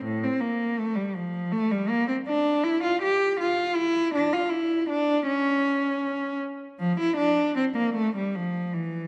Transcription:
X:1
M:3/4
L:1/16
Q:1/4=80
K:Dm
V:1 name="Cello"
A,, C B,2 A, G, F,2 A, G, B, C | D2 E F G2 F2 E2 D F | E2 D2 ^C6 z2 | F, E D2 C B, A, G, F,2 E,2 |]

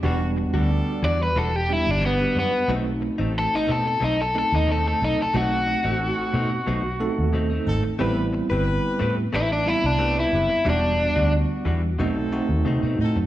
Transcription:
X:1
M:4/4
L:1/16
Q:1/4=90
K:Em
V:1 name="Overdriven electric guitar"
z6 d B A G E D B,2 B,2 | z4 A ^D A A D A A D A A D A | F12 z4 | z8 E D E D2 E3 |
D4 z12 |]
V:2 name="Horn section"
[G,DF]2 z [G,DA]4 z6 z [G,DF] z | [C^DA]2 z [CDA]4 z6 z [CDA] z | [C^DA]2 z [CDA]4 z6 z [CDA] z | [CGB]2 z [GB]4 z6 z [CGB] z |
[DFG]2 z [DF]4 z [C^DA]4- [CDA] z [CDA] z |]
V:3 name="Clean electric guitar"
[E,G,DF] z2 [G,DF] z2 [E,G,DF] z [E,G,DF] z3 [E,G,DF] [G,DF] z2 | [B,,A,C^D] z2 [A,CD] z2 [B,,A,CD] z [B,,A,CD] z3 [B,,A,CD] [A,CD] z2 | [B,,A,C^D] z2 [A,CD] z2 [B,,A,CD] z [B,,A,CD] z3 [B,,A,CD] [A,CD] z2 | [A,CGB] z2 [CGB] z2 [A,CGB] z [A,CGB] z3 [A,CGB] [CGB] z2 |
[E,G,DF] z2 [G,DF] z2 [E,G,DF] z [B,,A,C^D] z3 [B,,A,CD] [A,CD] z2 |]
V:4 name="Tine electric piano"
[G,B,DF]8 z2 [G,B,DG]6 | [A,C^DF]8 z2 [A,CDA]6 | [A,C^DF]8 z2 [A,CDA]6 | [G,B,CE]8 z2 [G,B,CE]6 |
[G,B,DF]8 [A,C^DF]2 [A,CDF]6 |]
V:5 name="Fingered electric bass" clef=bass
E,,,3 D,,2 z E,,2 E,,,3 G,,,3 F,, z | B,,,3 A,,,2 z B,,2 B,,,3 ^D,,3 B,,, z | B,,,3 A,,,2 z B,,2 B,,,3 ^D,,3 ^G,,, z | A,,,3 G,,,2 z A,,2 A,,,3 C,,3 F,,, z |
E,,,3 D,,2 z E,,2 B,,,3 ^D,, C, B,, A,, F,, |]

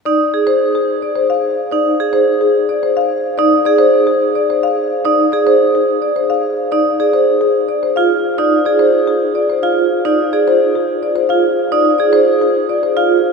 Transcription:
X:1
M:3/4
L:1/16
Q:1/4=108
K:Fdor
V:1 name="Marimba"
d z2 c z A z d c f z2 | d z2 c z A z d c f z2 | d z d c z A z d c f z2 | d z d c z A z d c f z2 |
d z d c z A z d c f z2 | d z d c z A z d c f z2 | d z d c z A z d c f z2 | d z d c z A z d c f z2 |]
V:2 name="Vibraphone"
E z A z8 z | E z A z8 z | E z A z8 z | E z A z8 z |
E z A z6 F z2 | E z A z6 F z2 | E z A z6 F z2 | E z A z6 F z2 |]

